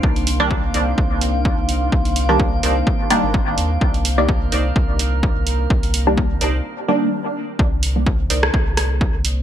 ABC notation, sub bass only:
X:1
M:4/4
L:1/16
Q:"Swing 16ths" 1/4=127
K:Cm
V:1 name="Sub bass" clef=bass
C,,6 C,,2 C,,4- C,, C,,3 | C,,6 C,,2 z3 G,,,3 E,,2 | C,,6 C,,2 C,,4- C,, C,,3 | C,,6 C,,2 z8 |
C,,6 C,,2 C,,4- C,, C,,3 |]